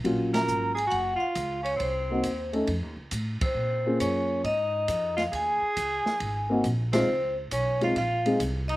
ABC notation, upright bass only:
X:1
M:4/4
L:1/8
Q:"Swing" 1/4=136
K:Db
V:1 name="Upright bass" clef=bass
B,,,2 A,,,2 G,,, z D,,2 | C,,2 E,,2 (3F,, E,, ^C,, =A,, z | B,,2 G,,2 A,,2 F,,2 | E,, z D,, z A,,,2 B,,,2 |
D,,2 _C,,2 B,,,2 =C,,2 |]